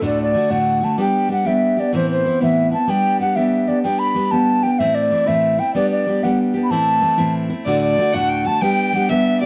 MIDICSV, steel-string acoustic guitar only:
0, 0, Header, 1, 2, 480
1, 0, Start_track
1, 0, Tempo, 317965
1, 39, Time_signature, 6, 3, 24, 8
1, 14278, End_track
2, 0, Start_track
2, 0, Title_t, "Steel-string acoustic guitar"
2, 0, Program_c, 0, 25
2, 19, Note_on_c, 0, 38, 73
2, 31, Note_on_c, 0, 45, 74
2, 34, Note_on_c, 0, 50, 67
2, 40, Note_on_c, 0, 57, 66
2, 43, Note_on_c, 0, 62, 75
2, 52, Note_on_c, 0, 66, 78
2, 479, Note_off_c, 0, 50, 0
2, 497, Note_on_c, 0, 50, 47
2, 498, Note_off_c, 0, 57, 0
2, 509, Note_off_c, 0, 38, 0
2, 515, Note_off_c, 0, 45, 0
2, 516, Note_on_c, 0, 57, 54
2, 517, Note_off_c, 0, 62, 0
2, 526, Note_off_c, 0, 66, 0
2, 535, Note_on_c, 0, 62, 53
2, 543, Note_on_c, 0, 66, 62
2, 724, Note_off_c, 0, 66, 0
2, 734, Note_off_c, 0, 62, 0
2, 737, Note_off_c, 0, 57, 0
2, 742, Note_on_c, 0, 66, 64
2, 748, Note_off_c, 0, 50, 0
2, 752, Note_on_c, 0, 62, 61
2, 755, Note_on_c, 0, 57, 57
2, 764, Note_on_c, 0, 45, 51
2, 764, Note_on_c, 0, 50, 54
2, 773, Note_on_c, 0, 38, 44
2, 1206, Note_off_c, 0, 66, 0
2, 1222, Note_off_c, 0, 62, 0
2, 1224, Note_on_c, 0, 66, 45
2, 1237, Note_off_c, 0, 57, 0
2, 1240, Note_on_c, 0, 62, 45
2, 1241, Note_off_c, 0, 50, 0
2, 1242, Note_off_c, 0, 45, 0
2, 1246, Note_off_c, 0, 38, 0
2, 1256, Note_on_c, 0, 57, 41
2, 1269, Note_on_c, 0, 50, 40
2, 1471, Note_off_c, 0, 50, 0
2, 1471, Note_off_c, 0, 66, 0
2, 1477, Note_on_c, 0, 55, 77
2, 1480, Note_off_c, 0, 62, 0
2, 1482, Note_off_c, 0, 57, 0
2, 1488, Note_on_c, 0, 59, 75
2, 1501, Note_on_c, 0, 62, 71
2, 1508, Note_on_c, 0, 67, 81
2, 1926, Note_off_c, 0, 55, 0
2, 1944, Note_on_c, 0, 55, 52
2, 1961, Note_off_c, 0, 59, 0
2, 1965, Note_off_c, 0, 62, 0
2, 1967, Note_on_c, 0, 59, 52
2, 1973, Note_off_c, 0, 67, 0
2, 1983, Note_on_c, 0, 62, 57
2, 1995, Note_on_c, 0, 67, 55
2, 2168, Note_off_c, 0, 67, 0
2, 2186, Note_off_c, 0, 62, 0
2, 2186, Note_on_c, 0, 67, 64
2, 2191, Note_off_c, 0, 55, 0
2, 2194, Note_off_c, 0, 59, 0
2, 2204, Note_on_c, 0, 62, 57
2, 2212, Note_on_c, 0, 59, 54
2, 2222, Note_on_c, 0, 55, 52
2, 2650, Note_off_c, 0, 67, 0
2, 2668, Note_on_c, 0, 67, 52
2, 2676, Note_off_c, 0, 62, 0
2, 2690, Note_off_c, 0, 55, 0
2, 2694, Note_on_c, 0, 62, 44
2, 2711, Note_off_c, 0, 59, 0
2, 2717, Note_on_c, 0, 59, 40
2, 2909, Note_off_c, 0, 59, 0
2, 2910, Note_on_c, 0, 45, 71
2, 2913, Note_off_c, 0, 67, 0
2, 2919, Note_on_c, 0, 52, 70
2, 2926, Note_off_c, 0, 62, 0
2, 2927, Note_on_c, 0, 59, 68
2, 2935, Note_on_c, 0, 60, 74
2, 2941, Note_on_c, 0, 64, 82
2, 3369, Note_off_c, 0, 52, 0
2, 3387, Note_on_c, 0, 52, 52
2, 3394, Note_off_c, 0, 45, 0
2, 3400, Note_off_c, 0, 59, 0
2, 3401, Note_off_c, 0, 60, 0
2, 3406, Note_on_c, 0, 59, 57
2, 3409, Note_off_c, 0, 64, 0
2, 3419, Note_on_c, 0, 60, 59
2, 3436, Note_on_c, 0, 64, 60
2, 3612, Note_off_c, 0, 64, 0
2, 3618, Note_off_c, 0, 60, 0
2, 3623, Note_off_c, 0, 59, 0
2, 3630, Note_on_c, 0, 64, 62
2, 3632, Note_off_c, 0, 52, 0
2, 3636, Note_on_c, 0, 60, 53
2, 3641, Note_on_c, 0, 59, 61
2, 3654, Note_on_c, 0, 52, 52
2, 3659, Note_on_c, 0, 45, 51
2, 4084, Note_off_c, 0, 64, 0
2, 4102, Note_on_c, 0, 64, 49
2, 4107, Note_off_c, 0, 60, 0
2, 4125, Note_off_c, 0, 52, 0
2, 4125, Note_on_c, 0, 60, 42
2, 4128, Note_off_c, 0, 45, 0
2, 4142, Note_off_c, 0, 59, 0
2, 4148, Note_on_c, 0, 59, 38
2, 4336, Note_off_c, 0, 59, 0
2, 4340, Note_on_c, 0, 55, 69
2, 4350, Note_off_c, 0, 64, 0
2, 4354, Note_on_c, 0, 59, 76
2, 4360, Note_off_c, 0, 60, 0
2, 4367, Note_on_c, 0, 62, 76
2, 4377, Note_on_c, 0, 67, 81
2, 4806, Note_off_c, 0, 55, 0
2, 4821, Note_off_c, 0, 59, 0
2, 4824, Note_on_c, 0, 55, 52
2, 4836, Note_off_c, 0, 62, 0
2, 4839, Note_on_c, 0, 59, 56
2, 4847, Note_off_c, 0, 67, 0
2, 4854, Note_on_c, 0, 62, 59
2, 4871, Note_on_c, 0, 67, 59
2, 5054, Note_off_c, 0, 67, 0
2, 5061, Note_off_c, 0, 62, 0
2, 5071, Note_off_c, 0, 55, 0
2, 5072, Note_on_c, 0, 67, 63
2, 5078, Note_off_c, 0, 59, 0
2, 5079, Note_on_c, 0, 62, 57
2, 5100, Note_on_c, 0, 59, 53
2, 5105, Note_on_c, 0, 55, 52
2, 5525, Note_off_c, 0, 67, 0
2, 5543, Note_on_c, 0, 67, 47
2, 5553, Note_off_c, 0, 62, 0
2, 5568, Note_off_c, 0, 59, 0
2, 5571, Note_off_c, 0, 55, 0
2, 5571, Note_on_c, 0, 62, 44
2, 5588, Note_on_c, 0, 59, 40
2, 5783, Note_off_c, 0, 59, 0
2, 5790, Note_off_c, 0, 67, 0
2, 5794, Note_off_c, 0, 62, 0
2, 5795, Note_on_c, 0, 55, 67
2, 5801, Note_on_c, 0, 59, 66
2, 5812, Note_on_c, 0, 62, 70
2, 5827, Note_on_c, 0, 67, 69
2, 6240, Note_off_c, 0, 55, 0
2, 6258, Note_off_c, 0, 59, 0
2, 6258, Note_on_c, 0, 55, 51
2, 6270, Note_off_c, 0, 62, 0
2, 6276, Note_on_c, 0, 59, 59
2, 6289, Note_on_c, 0, 62, 56
2, 6292, Note_off_c, 0, 67, 0
2, 6308, Note_on_c, 0, 67, 54
2, 6494, Note_off_c, 0, 67, 0
2, 6506, Note_off_c, 0, 62, 0
2, 6507, Note_off_c, 0, 55, 0
2, 6512, Note_off_c, 0, 59, 0
2, 6512, Note_on_c, 0, 67, 59
2, 6524, Note_on_c, 0, 62, 54
2, 6530, Note_on_c, 0, 59, 54
2, 6547, Note_on_c, 0, 55, 51
2, 6965, Note_off_c, 0, 67, 0
2, 6984, Note_off_c, 0, 62, 0
2, 6984, Note_on_c, 0, 67, 52
2, 7002, Note_on_c, 0, 62, 47
2, 7003, Note_off_c, 0, 59, 0
2, 7011, Note_off_c, 0, 55, 0
2, 7025, Note_on_c, 0, 59, 40
2, 7230, Note_off_c, 0, 67, 0
2, 7236, Note_on_c, 0, 45, 61
2, 7239, Note_off_c, 0, 62, 0
2, 7245, Note_on_c, 0, 52, 72
2, 7246, Note_off_c, 0, 59, 0
2, 7252, Note_on_c, 0, 60, 74
2, 7258, Note_on_c, 0, 57, 71
2, 7269, Note_on_c, 0, 64, 76
2, 7687, Note_off_c, 0, 52, 0
2, 7705, Note_on_c, 0, 52, 53
2, 7707, Note_off_c, 0, 60, 0
2, 7716, Note_off_c, 0, 45, 0
2, 7718, Note_off_c, 0, 57, 0
2, 7725, Note_on_c, 0, 60, 56
2, 7732, Note_off_c, 0, 64, 0
2, 7736, Note_on_c, 0, 57, 57
2, 7749, Note_on_c, 0, 64, 61
2, 7921, Note_off_c, 0, 64, 0
2, 7931, Note_off_c, 0, 57, 0
2, 7939, Note_on_c, 0, 64, 62
2, 7942, Note_off_c, 0, 60, 0
2, 7949, Note_on_c, 0, 57, 62
2, 7950, Note_off_c, 0, 52, 0
2, 7960, Note_on_c, 0, 60, 51
2, 7967, Note_on_c, 0, 52, 52
2, 7979, Note_on_c, 0, 45, 50
2, 8408, Note_off_c, 0, 64, 0
2, 8426, Note_on_c, 0, 64, 50
2, 8432, Note_off_c, 0, 57, 0
2, 8438, Note_off_c, 0, 60, 0
2, 8442, Note_off_c, 0, 52, 0
2, 8447, Note_off_c, 0, 45, 0
2, 8452, Note_on_c, 0, 57, 45
2, 8475, Note_on_c, 0, 60, 40
2, 8671, Note_off_c, 0, 64, 0
2, 8675, Note_on_c, 0, 55, 69
2, 8680, Note_off_c, 0, 60, 0
2, 8684, Note_off_c, 0, 57, 0
2, 8686, Note_on_c, 0, 59, 74
2, 8694, Note_on_c, 0, 62, 76
2, 8710, Note_on_c, 0, 67, 74
2, 9134, Note_off_c, 0, 55, 0
2, 9146, Note_off_c, 0, 59, 0
2, 9153, Note_on_c, 0, 55, 53
2, 9164, Note_on_c, 0, 59, 55
2, 9165, Note_off_c, 0, 62, 0
2, 9173, Note_off_c, 0, 67, 0
2, 9180, Note_on_c, 0, 62, 57
2, 9199, Note_on_c, 0, 67, 62
2, 9379, Note_off_c, 0, 67, 0
2, 9394, Note_off_c, 0, 55, 0
2, 9395, Note_off_c, 0, 62, 0
2, 9397, Note_on_c, 0, 67, 58
2, 9400, Note_off_c, 0, 59, 0
2, 9413, Note_on_c, 0, 62, 55
2, 9420, Note_on_c, 0, 59, 55
2, 9431, Note_on_c, 0, 55, 52
2, 9852, Note_off_c, 0, 67, 0
2, 9871, Note_on_c, 0, 67, 57
2, 9879, Note_off_c, 0, 62, 0
2, 9888, Note_off_c, 0, 59, 0
2, 9893, Note_off_c, 0, 55, 0
2, 9897, Note_on_c, 0, 62, 49
2, 9917, Note_on_c, 0, 59, 46
2, 10113, Note_off_c, 0, 67, 0
2, 10115, Note_on_c, 0, 45, 66
2, 10127, Note_off_c, 0, 62, 0
2, 10129, Note_on_c, 0, 52, 70
2, 10135, Note_off_c, 0, 59, 0
2, 10141, Note_on_c, 0, 60, 73
2, 10143, Note_on_c, 0, 57, 72
2, 10156, Note_on_c, 0, 64, 82
2, 10564, Note_off_c, 0, 52, 0
2, 10576, Note_off_c, 0, 60, 0
2, 10582, Note_on_c, 0, 52, 52
2, 10594, Note_on_c, 0, 60, 52
2, 10596, Note_off_c, 0, 45, 0
2, 10599, Note_off_c, 0, 57, 0
2, 10612, Note_off_c, 0, 64, 0
2, 10617, Note_on_c, 0, 57, 60
2, 10630, Note_on_c, 0, 64, 58
2, 10814, Note_off_c, 0, 64, 0
2, 10822, Note_off_c, 0, 57, 0
2, 10829, Note_off_c, 0, 52, 0
2, 10832, Note_on_c, 0, 64, 75
2, 10835, Note_off_c, 0, 60, 0
2, 10840, Note_on_c, 0, 57, 68
2, 10851, Note_on_c, 0, 60, 69
2, 10856, Note_on_c, 0, 52, 54
2, 10869, Note_on_c, 0, 45, 56
2, 11296, Note_off_c, 0, 64, 0
2, 11314, Note_on_c, 0, 64, 54
2, 11318, Note_off_c, 0, 57, 0
2, 11324, Note_off_c, 0, 60, 0
2, 11326, Note_off_c, 0, 52, 0
2, 11333, Note_off_c, 0, 45, 0
2, 11335, Note_on_c, 0, 57, 50
2, 11356, Note_on_c, 0, 60, 45
2, 11554, Note_on_c, 0, 38, 71
2, 11555, Note_off_c, 0, 64, 0
2, 11560, Note_off_c, 0, 57, 0
2, 11565, Note_on_c, 0, 45, 71
2, 11572, Note_off_c, 0, 60, 0
2, 11572, Note_on_c, 0, 50, 74
2, 11578, Note_on_c, 0, 57, 74
2, 11583, Note_on_c, 0, 62, 75
2, 11591, Note_on_c, 0, 66, 78
2, 12021, Note_off_c, 0, 50, 0
2, 12035, Note_off_c, 0, 57, 0
2, 12036, Note_off_c, 0, 38, 0
2, 12039, Note_on_c, 0, 50, 52
2, 12041, Note_off_c, 0, 45, 0
2, 12050, Note_off_c, 0, 62, 0
2, 12053, Note_on_c, 0, 57, 57
2, 12054, Note_off_c, 0, 66, 0
2, 12068, Note_on_c, 0, 62, 52
2, 12089, Note_on_c, 0, 66, 63
2, 12261, Note_off_c, 0, 66, 0
2, 12271, Note_off_c, 0, 62, 0
2, 12273, Note_off_c, 0, 57, 0
2, 12278, Note_off_c, 0, 50, 0
2, 12279, Note_on_c, 0, 66, 61
2, 12290, Note_on_c, 0, 62, 61
2, 12291, Note_on_c, 0, 57, 53
2, 12302, Note_on_c, 0, 45, 50
2, 12303, Note_on_c, 0, 50, 51
2, 12310, Note_on_c, 0, 38, 53
2, 12738, Note_off_c, 0, 66, 0
2, 12757, Note_on_c, 0, 66, 50
2, 12758, Note_off_c, 0, 62, 0
2, 12765, Note_off_c, 0, 57, 0
2, 12770, Note_off_c, 0, 45, 0
2, 12770, Note_off_c, 0, 50, 0
2, 12774, Note_off_c, 0, 38, 0
2, 12776, Note_on_c, 0, 62, 50
2, 12791, Note_on_c, 0, 57, 39
2, 12801, Note_on_c, 0, 50, 38
2, 12997, Note_off_c, 0, 50, 0
2, 12997, Note_off_c, 0, 66, 0
2, 13003, Note_on_c, 0, 55, 76
2, 13007, Note_off_c, 0, 57, 0
2, 13007, Note_off_c, 0, 62, 0
2, 13013, Note_on_c, 0, 59, 79
2, 13029, Note_on_c, 0, 62, 76
2, 13034, Note_on_c, 0, 67, 80
2, 13459, Note_off_c, 0, 55, 0
2, 13478, Note_on_c, 0, 55, 56
2, 13494, Note_off_c, 0, 62, 0
2, 13496, Note_off_c, 0, 67, 0
2, 13498, Note_off_c, 0, 59, 0
2, 13504, Note_on_c, 0, 59, 57
2, 13515, Note_on_c, 0, 62, 61
2, 13531, Note_on_c, 0, 67, 54
2, 13708, Note_off_c, 0, 67, 0
2, 13718, Note_off_c, 0, 55, 0
2, 13718, Note_off_c, 0, 62, 0
2, 13726, Note_on_c, 0, 67, 58
2, 13732, Note_off_c, 0, 59, 0
2, 13736, Note_on_c, 0, 62, 61
2, 13753, Note_on_c, 0, 59, 52
2, 13755, Note_on_c, 0, 55, 53
2, 14196, Note_off_c, 0, 67, 0
2, 14208, Note_off_c, 0, 62, 0
2, 14214, Note_on_c, 0, 67, 47
2, 14217, Note_off_c, 0, 55, 0
2, 14232, Note_on_c, 0, 62, 46
2, 14253, Note_off_c, 0, 59, 0
2, 14278, Note_off_c, 0, 62, 0
2, 14278, Note_off_c, 0, 67, 0
2, 14278, End_track
0, 0, End_of_file